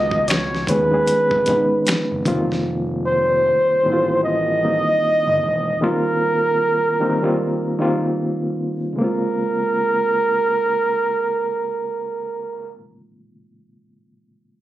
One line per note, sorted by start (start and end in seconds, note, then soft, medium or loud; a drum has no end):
0.00 0.64 C#2 loud
0.00 0.68 D#3 medium
0.00 2.27 F3 medium
0.00 0.69 G#3 medium
0.00 0.70 B3 medium
0.00 0.70 C#4 medium
0.00 2.27 F4 medium
0.00 0.64 F#4 loud
0.00 0.31 D#5 loud
0.11 kick loud
0.28 0.71 C#5 loud
0.28 finger snap medium
0.28 snare loud
0.28 closed hi-hat medium
0.55 snare soft
0.67 0.99 D#2 medium
0.67 0.89 D#3 medium
0.67 0.89 G#3 medium
0.67 0.90 B3 medium
0.67 0.90 C#4 medium
0.67 0.90 G#4 medium
0.67 2.26 B4 loud
0.67 kick medium
0.67 closed hi-hat medium
0.91 1.43 D#3 medium
0.91 1.43 G#3 medium
0.91 1.44 B3 medium
0.91 1.44 C#4 medium
0.91 1.44 G#4 medium
1.08 1.18 G#1 soft
1.08 closed hi-hat loud
1.31 1.62 G#1 medium
1.31 kick loud
1.46 2.24 D#3 medium
1.46 2.26 G#3 medium
1.46 2.26 B3 medium
1.46 2.27 C#4 medium
1.46 kick loud
1.46 closed hi-hat medium
1.50 2.27 D#4 medium
1.87 finger snap medium
1.87 snare loud
1.87 closed hi-hat loud
2.11 2.23 F#1 loud
2.25 3.51 F1 medium
2.25 3.73 D#3 medium
2.25 3.73 G3 medium
2.25 3.73 A#3 medium
2.25 3.74 C4 medium
2.25 3.74 F4 loud
2.25 kick medium
2.25 closed hi-hat medium
2.52 snare soft
3.05 4.19 C5 medium
3.83 4.83 A1 medium
3.83 4.57 D#3 medium
3.83 4.57 G3 medium
3.83 4.58 A#3 medium
3.83 4.58 C4 medium
3.83 3.92 E4 medium
3.93 4.62 F4 medium
4.24 5.77 D#5 loud
4.62 5.73 D#3 medium
4.62 5.73 G3 medium
4.62 5.73 A#3 medium
4.62 5.74 C4 medium
4.62 5.74 D#4 medium
5.27 5.39 G1 loud
5.44 5.74 E1 loud
5.81 6.91 D#3 loud
5.81 6.92 G3 medium
5.81 6.92 A#3 medium
5.81 6.92 C4 medium
5.81 6.93 F4 loud
5.81 8.14 A#4 loud
7.00 7.21 D#3 medium
7.00 7.21 G3 medium
7.00 7.21 A#3 medium
7.00 7.22 C4 medium
7.00 7.22 D#4 medium
7.22 7.74 D#3 medium
7.22 7.75 G3 medium
7.22 7.75 A#3 medium
7.22 7.75 C4 medium
7.22 7.76 F4 medium
7.79 8.89 D#3 medium
7.79 8.89 G3 medium
7.79 8.90 A#3 medium
7.79 8.90 C4 medium
7.79 8.90 F4 medium
8.93 12.65 C#3 medium
8.93 12.68 G#3 medium
8.99 12.71 A#3 medium
8.99 12.74 C4 medium
8.99 12.71 A#4 medium
9.04 12.77 F4 medium